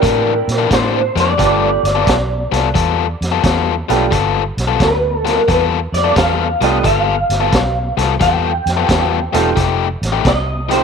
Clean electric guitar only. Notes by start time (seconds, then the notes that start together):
Already playing: A#4
0.74 C5
1.20 D5
4.84 B4
5.28 A#4
5.51 B4
5.94 D5
6.17 F5
6.63 D#5
6.86 F5
8.22 G5
10.28 D#5
10.72 C5